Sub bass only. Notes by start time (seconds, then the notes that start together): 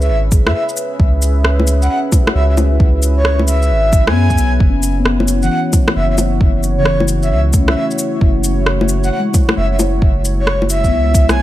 Already playing: C#2
0.09 G#1
0.47 F#2
1.00 C#2
2.35 C#2
3.71 G#1
4.08 F#2
4.38 B1
4.60 F#1
5.96 F#1
6.41 F#1
7.32 C#2
7.69 B1
8.21 F#1
9.57 F#1
10.02 F#1
10.92 C#2
11.29 B1